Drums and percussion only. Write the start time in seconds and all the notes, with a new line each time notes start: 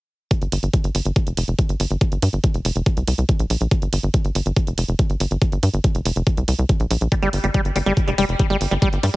0.31 kick, closed hi-hat
0.42 closed hi-hat
0.52 open hi-hat
0.63 closed hi-hat
0.74 kick, closed hi-hat
0.84 closed hi-hat
0.95 open hi-hat
1.05 closed hi-hat
1.16 kick, closed hi-hat
1.27 closed hi-hat
1.37 open hi-hat
1.48 closed hi-hat
1.59 kick, closed hi-hat
1.69 closed hi-hat
1.80 open hi-hat
1.91 closed hi-hat
2.01 kick, closed hi-hat
2.12 closed hi-hat
2.22 open hi-hat
2.33 closed hi-hat
2.44 kick, closed hi-hat
2.54 closed hi-hat
2.65 open hi-hat
2.76 closed hi-hat
2.86 kick, closed hi-hat
2.97 closed hi-hat
3.08 open hi-hat
3.18 closed hi-hat
3.29 kick, closed hi-hat
3.39 closed hi-hat
3.50 open hi-hat
3.61 closed hi-hat
3.71 kick, closed hi-hat
3.82 closed hi-hat
3.93 open hi-hat
4.03 closed hi-hat
4.14 kick, closed hi-hat
4.25 closed hi-hat
4.35 open hi-hat
4.46 closed hi-hat
4.57 kick, closed hi-hat
4.67 closed hi-hat
4.78 open hi-hat
4.88 closed hi-hat
4.99 kick, closed hi-hat
5.10 closed hi-hat
5.20 open hi-hat
5.31 closed hi-hat
5.42 kick, closed hi-hat
5.52 closed hi-hat
5.63 open hi-hat
5.74 closed hi-hat
5.84 kick, closed hi-hat
5.95 closed hi-hat
6.05 open hi-hat
6.16 closed hi-hat
6.27 kick, closed hi-hat
6.37 closed hi-hat
6.48 open hi-hat
6.59 closed hi-hat
6.69 kick, closed hi-hat
6.80 closed hi-hat
6.91 open hi-hat
7.01 closed hi-hat
7.12 kick, closed hi-hat
7.22 closed hi-hat
7.33 open hi-hat
7.44 closed hi-hat
7.54 kick, closed hi-hat
7.65 closed hi-hat
7.76 open hi-hat
7.86 closed hi-hat
7.97 kick, closed hi-hat
8.08 closed hi-hat
8.18 open hi-hat
8.29 closed hi-hat
8.39 kick, closed hi-hat
8.50 closed hi-hat
8.61 open hi-hat
8.71 closed hi-hat
8.82 kick, closed hi-hat
8.93 closed hi-hat
9.03 open hi-hat